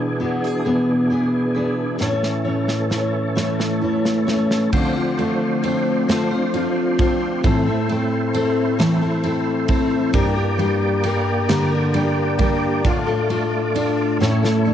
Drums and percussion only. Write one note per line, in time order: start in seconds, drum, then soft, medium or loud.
2.01 snare soft
2.23 snare soft
2.68 snare soft
2.91 snare medium
3.37 snare medium
3.60 snare medium
4.05 snare medium
4.28 snare medium
4.51 snare medium
4.73 kick medium
4.73 crash medium
5.19 ride soft
5.63 ride medium
6.09 snare loud
6.09 ride medium
6.54 ride soft
6.99 kick loud
6.99 ride medium
7.44 kick loud
7.44 ride medium
7.89 ride soft
8.34 ride medium
8.80 snare loud
8.80 ride medium
9.24 ride soft
9.68 kick medium
9.68 ride medium
10.14 kick loud
10.14 ride medium
10.59 ride soft
11.04 ride medium
11.49 snare loud
11.49 ride medium
11.94 ride medium
12.39 kick medium
12.39 ride medium
12.84 kick medium
12.84 ride medium
13.30 ride soft
13.75 ride medium
14.22 snare medium
14.45 snare medium